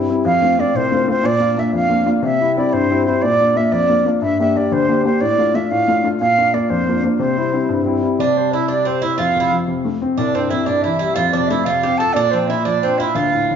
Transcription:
0.09 G3 C4 E4
0.25 F2 F5
0.42 A3 C4 F4
0.58 A3 C4 F4 D5
0.75 C2 C5
0.92 A3 C4 F4
1.08 A3 C4 F4 C5
1.23 A#2 D5
1.40 A#3 D4 F4
1.56 A#3 D4 F4 E5
1.73 F2 F5
1.89 A#3 D4 F4
2.06 A#3 D4 F4
2.22 C3 E5
2.40 G3 C4 E4
2.56 G3 C4 E4 D5
2.73 G2 C5
2.91 G3 C4 E4
3.06 G3 C4 E4 C5
3.22 A#2 D5
3.40 A#3 D4 F4
3.55 A#3 D4 F4 E5
3.72 F2 D5
3.89 A#3 D4 F4
4.05 A#3 D4 F4
4.22 G2 E5
4.40 A#3 D4 G4 E5
4.56 A#3 D4 G4 D5
4.72 D2 C5
4.89 A#3 D4 G4
5.05 A#3 D4 G4 C5
5.21 A2 D5
5.38 A3 D4 F4
5.54 A3 D4 F4 E5
5.71 A2 F5
5.88 A3 D4 F4
6.04 A3 D4 F4
6.20 A#2 F5
6.38 A#3 D4 F4
6.54 A#3 D4 F4 D5
6.70 F2 C5
6.88 A#3 D4 F4
7.04 A#3 D4 F4
7.19 C3 C5
7.37 G3 C4 E4
7.53 G3 C4 E4
7.69 G2
7.85 G3 C4 E4
8.02 G3 C4 E4
8.19 C3 D4 D5
8.37 G3 C5
8.53 E4 E5
8.68 G3 D4 D5
8.85 C4 G4 C5
9.02 E4 E5
9.18 F2 F4 F5
9.36 C3 E4
9.52 F3
9.68 C3
9.85 A3
10.02 C4
10.17 C2 D4 D5
10.35 G2 C4 C5
10.50 C3 E4 E5
10.66 G2 D4 D5
10.82 E3 E4 E5
10.99 G3 E4
11.14 F2 F4 F5
11.31 C3 D4 D5
11.47 A3 E4 E5
11.64 C3 F4 F5
11.83 C4 G4
11.98 F4 A4 A5
12.13 A#2 D4 D5
12.31 F3 C4 C5
12.47 A#3 E4 E5
12.65 F3 D4 D5
12.82 C4 D4 C5
12.98 E4 F4 E5
13.15 D2 F4 F5
13.33 A2
13.50 D3

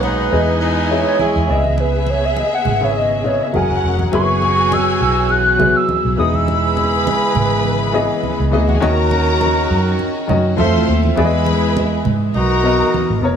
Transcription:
Already playing: B1 A#2 B2 D#4 B4 C#5 F#5
0.03 G#3 B3 D#4, high conga
0.30 E2 E3 B3 E4 G#4 D#5 G#5
0.61 G#3 B3 D#4
0.89 E3 B3 G#4 C#5 E5
1.19 G#3 E4 G#4, high conga
1.36 E2
1.47 C#2 C#3 B3 E4 G#4 D5 D#5 E5
1.57 E5
1.64 high conga
1.78 B4, muted conga
2.06 C#5, muted conga
2.25 E5
2.37 D#5, high conga
2.54 F#5
2.65 G#1, low conga
2.81 C#3 B3 E4 C#5 E5
2.97 D#5
3.24 C#3 B3 E4 C#5 D#5
3.43 E5
3.53 F#1 F#3 C#4 E4 G#4 A#4 F#5 G#5, high conga
3.70 F#1
3.84 F1
3.99 high conga
4.12 F#1 E3 F#3 B3 C#4 E4 F#4 G#4 A#4 G#5 C#6, muted conga
4.21 B4
4.42 muted conga
4.72 E6, high conga
5.01 B1 E6
5.29 F#6, muted conga
5.58 F#3 E4 G#4 B4, low conga
5.76 E6
5.89 high conga
6.05 B1
6.17 E1 C#3 E3 G#3 B3 D#4 E4 G#4 B4 B5 D#6
6.34 E6, high conga
6.48 muted conga
6.77 muted conga
7.07 high conga
7.35 G#1, low conga
7.64 muted conga
7.92 E3 B3 G#4 D#5
8.23 high conga
8.40 C#2
8.51 D2 E3 B3 D#4 G#4 D#5
8.60 E4 E5
8.68 F#4 F#5, high conga
8.74 G#4 G#5
8.80 D#2 D#3 C#4 D#4 F#4 A#4 D#5 A#5, muted conga
9.11 muted conga
9.41 high conga
9.71 F#2
9.99 muted conga
10.27 F#2 D#3 C#4 F#4 D#5, low conga
10.57 F2 F3 A3 C4 E4 F4 A4 C5 E5 C6, high conga
10.75 E2
10.88 D#2
11.03 high conga
11.15 E2 E3 G#3 B3 E4 G#4 B4 D5 B5, muted conga
11.25 D#5
11.46 muted conga
11.77 high conga
12.05 G#2, low conga
12.34 B1 B3 D#4 F#4 A#4 A#5, muted conga
12.63 B2 B3 A#4 D#5
12.94 high conga
13.10 G#1
13.22 F1 B2 B3 A#4 C#5

